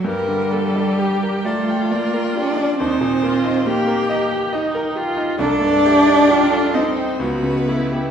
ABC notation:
X:1
M:3/4
L:1/16
Q:1/4=67
K:Gm
V:1 name="Violin"
G6 A2 B2 d2 | c4 B4 z4 | d6 c2 =B4 |]
V:2 name="Grand piano"
G,, D, B, D G B d g d B G D | E,, B,, B, E G B e g e B G E | C,, G,, A, E G A e g ^C,, ^C, A, G |]
V:3 name="Viola"
B2 A2 G2 F6 | E2 F2 G4 E2 F2 | A2 G2 F2 E2 ^F2 =E2 |]
V:4 name="Cello"
G,6 A,2 B,2 D2 | C4 B,4 z4 | D6 C2 =B,4 |]